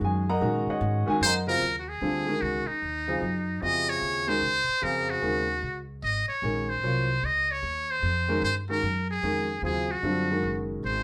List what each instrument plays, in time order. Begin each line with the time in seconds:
Already playing: grand piano D#3 G#3 C#4 F#4
0.01 upright bass F#2, grand piano G#5
0.05 grand piano G#4
0.29 grand piano A#4 D#5 F#5 A#5
0.40 upright bass A#2, grand piano D#3 G#3 C#4 F#4
0.67 grand piano F#4 C#5 D#5 F#5, muted upright bass stroke
0.81 upright bass G#2
1.06 grand piano D#3 G#3 C#4 F#4 G#5, muted upright bass stroke
1.10 grand piano G#4
1.21 upright bass F#2, muted trumpet C5
1.26 grand piano A#4 D#5 F#5
1.47 grand piano C#3 F#3 C4 F4, muted trumpet A#4
1.61 upright bass D#2
1.79 muted trumpet F#4
1.89 muted trumpet G#4
2.01 upright bass D2, grand piano D3 G3 C4 F4 A4
2.27 grand piano D#3 G#3 C#4 F#4 A#4
2.41 upright bass C#2, muted trumpet F#4
2.67 muted trumpet D#4, muted upright bass stroke
2.82 upright bass D#2
3.07 grand piano C#3 F#3 C4 F4 G#4
3.22 upright bass F#2
3.61 upright bass F2, grand piano C3 C#3 F4 F#4 G#4, muted trumpet D#5
3.89 muted trumpet C#5
4.01 upright bass D#2
4.27 grand piano D#3 G#3 C#4 F#4 A#4, muted trumpet C5
4.42 upright bass C#2
4.68 muted upright bass stroke
4.82 upright bass F2, grand piano C#3 C4 F#4 G#4 F5, muted trumpet A#4
5.10 muted trumpet F#4
5.22 upright bass D#2, grand piano D#3 G#3 C#4 F#4 A#4
5.62 upright bass C#2
6.03 upright bass G#1, muted trumpet D#5
6.29 muted trumpet C#5, muted upright bass stroke
6.42 upright bass A#1, grand piano D#3 G#3 C#4 F#4 A#4
6.69 muted trumpet C5
6.82 upright bass C2, grand piano F#3 C4 F4 A#4 C#5
7.23 upright bass C#2, muted trumpet D#5
7.51 muted trumpet C#5
7.62 upright bass D#2
7.91 muted trumpet C5
8.02 upright bass F2
8.28 grand piano D#3 G#3 C#4 F#4 A#4
8.42 upright bass G2, muted trumpet C5
8.69 grand piano D#3 G#3 C#4 F#4 A#4, muted trumpet A#4
8.83 upright bass F#2
9.11 muted trumpet G#4
9.23 upright bass F2, grand piano D#3 G#3 C#4 F#4 A#4
9.62 upright bass D#2, grand piano C#3 F#3 C4 F4 G#4, muted trumpet G#4
9.91 muted trumpet F#4
10.03 upright bass F#2, grand piano D3 G3 C4 F4 A4
10.30 grand piano D#3 G#3 C#4 F#4 A#4
10.43 upright bass F#1
10.83 upright bass G#1, muted trumpet C5